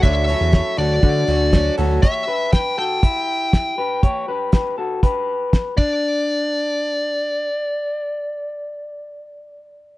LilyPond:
<<
  \new Staff \with { instrumentName = "Lead electric guitar" } { \time 4/4 \key e \dorian \tempo 4 = 120 e''4. d''2 r8 | e''4 g''8 g''2~ g''8~ | g''2. r8 d''8~ | d''1~ |
d''1 | }
  \new Staff \with { instrumentName = "Clean electric guitar" } { \time 4/4 \key e \dorian <a' d''>8 <a' cis''>8 <a' cis''>8 <fis' a'>8 <d' fis'>4. <fis' a'>8 | <g' cis''>8 <g' b'>8 <g' b'>8 <fis' a'>8 <e' g'>4. <g' b'>8 | <g' cis''>8 <g' b'>8 <g' b'>8 <fis' a'>8 <g' b'>4. d'8~ | d'2. r4 |
r1 | }
  \new Staff \with { instrumentName = "Twelve-string acoustic guitar" } { \time 4/4 \key e \dorian <d fis a cis' fis'>8 <fis a cis' fis'>4 <fis a fis'>4 <fis a cis' fis'>8 <fis a cis' fis'>8 <fis a cis' fis'>8 | r1 | r1 | r1 |
r1 | }
  \new Staff \with { instrumentName = "Analog synth bass" } { \clef bass \time 4/4 \key e \dorian d,8. e,8 r16 d,8 d8 d,4 d,8 | r1 | r1 | r1 |
r1 | }
  \new DrumStaff \with { instrumentName = "Drums" } \drummode { \time 4/4 <hh bd>8 hho8 <hh bd sn>8 hho8 <hh bd>8 hho8 <hh bd sn>8 hho8 | <hh bd>4 <hh bd sn>4 <hh bd>4 <hh bd sn>4 | <hh bd>4 <hh bd sn>4 <hh bd>4 <hh bd sn>8 <bd cymr>8 | r4 r4 r4 r4 |
r4 r4 r4 r4 | }
>>